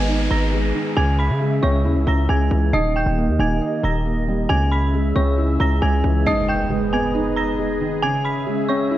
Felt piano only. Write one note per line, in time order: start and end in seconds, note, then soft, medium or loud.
0.00 0.30 G#2 medium
0.00 0.51 G#3 medium
0.00 0.97 B3 medium
0.09 0.97 D#4 loud
0.53 0.97 G#3 medium
0.75 0.97 D#3 medium
0.97 2.07 C#3 medium
1.41 2.27 G#3 medium
1.63 2.73 C#4 medium
1.85 2.73 E4 medium
2.29 2.73 G#3 medium
2.51 2.73 E3 medium
2.73 3.83 D#3 medium
3.17 4.04 A#3 medium
3.39 4.50 D#4 medium
3.61 4.50 D#5 medium
4.06 4.50 A#3 medium
4.28 4.50 G3 medium
4.50 5.60 C#3 loud
4.94 5.81 G#3 medium
5.16 6.26 C#4 medium
5.38 6.26 E4 medium
5.82 6.26 G#3 medium
6.04 6.26 E3 medium
6.26 7.36 G#2 medium
6.70 7.57 G#3 medium
6.93 8.03 B3 loud
7.15 8.03 D#4 loud
7.59 8.03 G#3 medium
7.81 8.03 D#3 medium
8.03 8.98 C#3 loud
8.47 8.98 G#3 medium
8.69 8.98 C#4 medium
8.91 8.98 E4 loud